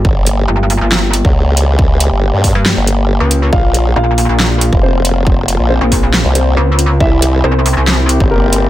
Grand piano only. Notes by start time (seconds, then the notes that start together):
3.53 F4 F5
3.96 F4 F5
4.83 C4 C5
5.70 C4 C5
6.35 C4 C5
7.00 E4 E5
7.44 C4 C5
8.31 A#3 A#4